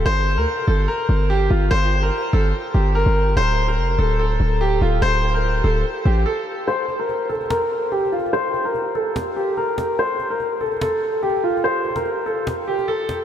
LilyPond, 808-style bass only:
\new Staff \with { instrumentName = "808-style bass" } { \clef bass \time 4/4 \key g \minor \tempo 4 = 145 g,,8. d,16 r8 g,,8 r8 g,,4 g,,8 | g,,4 r8 g,,8 r8 g,,8. g,,8. | d,,4 f,,8 d,,4 d,,4 d,,8 | d,,4. d,,8 r8 a,,8 r4 |
r1 | r1 | r1 | r1 | }